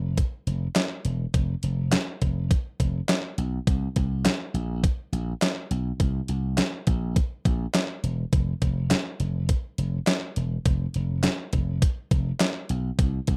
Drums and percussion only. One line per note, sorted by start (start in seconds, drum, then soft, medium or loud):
0.18 kick loud
0.18 closed hi-hat medium
0.47 closed hi-hat medium
0.75 snare loud
0.75 clap medium
0.75 closed hi-hat medium
1.05 closed hi-hat medium
1.34 kick loud
1.34 closed hi-hat medium
1.63 closed hi-hat medium
1.92 snare loud
1.92 clap loud
1.92 closed hi-hat medium
2.22 kick medium
2.22 closed hi-hat medium
2.51 kick loud
2.51 closed hi-hat medium
2.80 kick medium
2.80 closed hi-hat medium
3.09 snare loud
3.09 clap medium
3.09 closed hi-hat medium
3.38 closed hi-hat medium
3.67 kick loud
3.67 closed hi-hat medium
3.96 kick medium
3.96 closed hi-hat medium
4.25 snare loud
4.25 clap loud
4.25 closed hi-hat medium
4.55 closed hi-hat medium
4.84 kick loud
4.84 closed hi-hat medium
5.13 closed hi-hat medium
5.42 snare medium
5.42 clap medium
5.42 closed hi-hat medium
5.71 closed hi-hat medium
6.00 kick loud
6.00 closed hi-hat medium
6.28 closed hi-hat medium
6.58 snare loud
6.58 clap medium
6.58 closed hi-hat medium
6.87 kick medium
6.87 closed hi-hat medium
7.16 kick loud
7.16 closed hi-hat medium
7.45 kick medium
7.45 closed hi-hat medium
7.74 snare medium
7.74 clap medium
7.74 closed hi-hat medium
8.04 closed hi-hat medium
8.33 kick loud
8.33 closed hi-hat medium
8.62 kick medium
8.62 closed hi-hat medium
8.91 snare loud
8.91 clap medium
8.91 closed hi-hat medium
9.20 closed hi-hat medium
9.49 kick loud
9.49 closed hi-hat medium
9.78 closed hi-hat medium
10.07 snare loud
10.07 clap medium
10.07 closed hi-hat medium
10.36 closed hi-hat medium
10.65 kick loud
10.65 closed hi-hat medium
10.94 closed hi-hat medium
11.23 snare loud
11.23 clap medium
11.23 closed hi-hat medium
11.53 kick medium
11.53 closed hi-hat medium
11.82 kick loud
11.82 closed hi-hat medium
12.11 kick loud
12.11 closed hi-hat medium
12.40 snare loud
12.40 clap medium
12.40 closed hi-hat medium
12.69 closed hi-hat medium
12.99 kick loud
12.99 closed hi-hat medium
13.27 kick medium
13.27 closed hi-hat medium